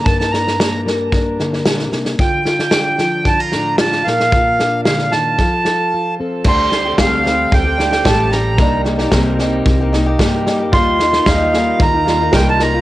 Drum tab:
CC |----------------|----------------|----------------|x---------------|
SD |ooooo-o-o-oooooo|o-ooo-o-o-o-oooo|o-o-ooo-o-o-----|o-o-o-o-o-ooo-o-|
BD |o-------o-------|o-------o-------|o-------o-------|o---o---o---o---|

CC |----------------|----------------|
SD |o-ooo-o-o-o-o-o-|o-ooo-o-o-o-o-o-|
BD |o---o---o---o---|o---o---o---o---|